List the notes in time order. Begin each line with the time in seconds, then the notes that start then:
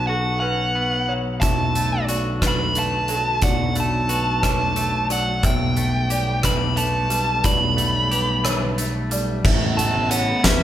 Already playing: B1 B2 C#3 F#3 B3
0.07 F#4 A4 F#5
0.40 C#4 B4 F#5
0.75 B3
1.09 F#3 C#5
1.41 B1 B2 D3 F#3 A3 E5 A5, kick, closed hi-hat
1.75 A3, closed hi-hat
2.08 F#4 D5, closed hi-hat
2.42 D4 B4, kick, cross-stick, closed hi-hat
2.48 B5
2.75 A3 A5, closed hi-hat
3.08 F#3 A4, closed hi-hat
3.42 B1 B2 D5 F#5, kick, closed hi-hat
3.76 A3, closed hi-hat
3.80 A5
4.08 F#4 B4, closed hi-hat
4.42 D4 C#5 A5, kick, cross-stick, closed hi-hat
4.76 A3, closed hi-hat
5.10 F#3 D5 F#5, closed hi-hat
5.43 B1 B2 G3 A3 B3 E5 G5, kick, closed hi-hat
5.77 A3, closed hi-hat
6.10 G4 D5, closed hi-hat
6.43 D4 B4 B5, kick, cross-stick, closed hi-hat
6.77 A3 A5, closed hi-hat
7.10 G3 B4, closed hi-hat
7.44 B1 B2 D5 B5, kick, closed hi-hat
7.77 A3, closed hi-hat
8.11 G4 B4, closed hi-hat
8.44 D4 C#5, cross-stick, closed hi-hat
8.78 A3, closed hi-hat
9.11 G3 D5, closed hi-hat
9.45 A1 A2 C#3 A3 B3 E5, kick, crash
9.77 A3 A5, closed hi-hat
10.11 B3 C#5 F#5, closed hi-hat
10.43 E2 C#4 B4 E5, kick, snare, closed hi-hat